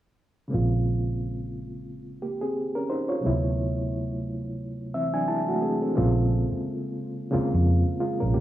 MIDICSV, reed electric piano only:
0, 0, Header, 1, 2, 480
1, 0, Start_track
1, 0, Tempo, 681818
1, 358, Time_signature, 4, 2, 24, 8
1, 5916, End_track
2, 0, Start_track
2, 0, Title_t, "Reed electric piano"
2, 0, Program_c, 0, 4
2, 336, Note_on_c, 0, 49, 54
2, 349, Note_on_c, 0, 56, 46
2, 359, Note_on_c, 0, 58, 49
2, 370, Note_on_c, 0, 60, 51
2, 381, Note_on_c, 0, 65, 56
2, 499, Control_c, 0, 64, 127
2, 1534, Note_off_c, 0, 58, 0
2, 1540, Note_off_c, 0, 60, 0
2, 1546, Note_off_c, 0, 65, 0
2, 1564, Note_on_c, 0, 67, 50
2, 1567, Note_on_c, 0, 58, 42
2, 1693, Note_off_c, 0, 67, 0
2, 1695, Note_off_c, 0, 58, 0
2, 1699, Note_on_c, 0, 68, 52
2, 1706, Note_on_c, 0, 60, 43
2, 1926, Note_off_c, 0, 68, 0
2, 1930, Note_off_c, 0, 60, 0
2, 1938, Note_on_c, 0, 70, 57
2, 1943, Note_on_c, 0, 61, 48
2, 1999, Note_off_c, 0, 49, 0
2, 2005, Note_off_c, 0, 56, 0
2, 2033, Note_off_c, 0, 70, 0
2, 2036, Note_off_c, 0, 61, 0
2, 2040, Note_on_c, 0, 72, 53
2, 2045, Note_on_c, 0, 63, 45
2, 2171, Note_off_c, 0, 72, 0
2, 2174, Note_off_c, 0, 63, 0
2, 2175, Note_on_c, 0, 73, 51
2, 2181, Note_on_c, 0, 65, 41
2, 2257, Note_on_c, 0, 48, 55
2, 2266, Note_on_c, 0, 54, 54
2, 2276, Note_on_c, 0, 57, 53
2, 2287, Control_c, 0, 64, 0
2, 2289, Note_on_c, 0, 59, 52
2, 2299, Note_on_c, 0, 64, 63
2, 2403, Control_c, 0, 64, 127
2, 2404, Note_off_c, 0, 73, 0
2, 2407, Note_off_c, 0, 65, 0
2, 3448, Note_off_c, 0, 54, 0
2, 3453, Note_off_c, 0, 57, 0
2, 3459, Note_off_c, 0, 59, 0
2, 3464, Note_off_c, 0, 64, 0
2, 3480, Note_on_c, 0, 76, 60
2, 3482, Note_on_c, 0, 60, 52
2, 3488, Note_on_c, 0, 52, 44
2, 3608, Note_off_c, 0, 76, 0
2, 3612, Note_off_c, 0, 60, 0
2, 3615, Note_off_c, 0, 52, 0
2, 3616, Note_on_c, 0, 62, 52
2, 3617, Note_on_c, 0, 80, 56
2, 3621, Note_on_c, 0, 54, 45
2, 3710, Note_off_c, 0, 80, 0
2, 3712, Note_off_c, 0, 62, 0
2, 3715, Note_off_c, 0, 54, 0
2, 3717, Note_on_c, 0, 81, 58
2, 3718, Note_on_c, 0, 64, 61
2, 3720, Note_on_c, 0, 56, 49
2, 3850, Note_off_c, 0, 64, 0
2, 3851, Note_off_c, 0, 56, 0
2, 3860, Note_on_c, 0, 66, 57
2, 3866, Note_on_c, 0, 57, 47
2, 3954, Note_off_c, 0, 66, 0
2, 3957, Note_off_c, 0, 57, 0
2, 3958, Note_on_c, 0, 68, 55
2, 3959, Note_on_c, 0, 60, 44
2, 4089, Note_off_c, 0, 60, 0
2, 4090, Note_off_c, 0, 68, 0
2, 4096, Note_on_c, 0, 69, 49
2, 4098, Note_on_c, 0, 60, 40
2, 4159, Note_off_c, 0, 48, 0
2, 4169, Note_off_c, 0, 81, 0
2, 4188, Note_on_c, 0, 49, 66
2, 4193, Note_on_c, 0, 56, 59
2, 4195, Note_off_c, 0, 60, 0
2, 4198, Note_on_c, 0, 58, 59
2, 4203, Note_on_c, 0, 60, 55
2, 4208, Control_c, 0, 64, 0
2, 4208, Note_on_c, 0, 65, 72
2, 4310, Control_c, 0, 64, 127
2, 4324, Note_off_c, 0, 69, 0
2, 5012, Note_off_c, 0, 49, 0
2, 5015, Note_off_c, 0, 56, 0
2, 5017, Note_off_c, 0, 58, 0
2, 5020, Note_off_c, 0, 60, 0
2, 5022, Note_off_c, 0, 65, 0
2, 5143, Note_on_c, 0, 49, 69
2, 5149, Note_on_c, 0, 56, 59
2, 5155, Note_on_c, 0, 58, 62
2, 5160, Note_on_c, 0, 60, 61
2, 5166, Note_on_c, 0, 65, 74
2, 5625, Note_off_c, 0, 65, 0
2, 5630, Note_off_c, 0, 56, 0
2, 5633, Note_on_c, 0, 65, 57
2, 5637, Note_off_c, 0, 58, 0
2, 5638, Note_on_c, 0, 56, 47
2, 5639, Note_off_c, 0, 60, 0
2, 5768, Note_off_c, 0, 65, 0
2, 5770, Note_off_c, 0, 56, 0
2, 5774, Note_on_c, 0, 70, 58
2, 5777, Note_on_c, 0, 61, 49
2, 5870, Note_on_c, 0, 67, 57
2, 5871, Note_off_c, 0, 70, 0
2, 5871, Note_on_c, 0, 58, 47
2, 5873, Note_off_c, 0, 61, 0
2, 5916, Note_off_c, 0, 49, 0
2, 5916, Note_off_c, 0, 58, 0
2, 5916, Note_off_c, 0, 67, 0
2, 5916, End_track
0, 0, End_of_file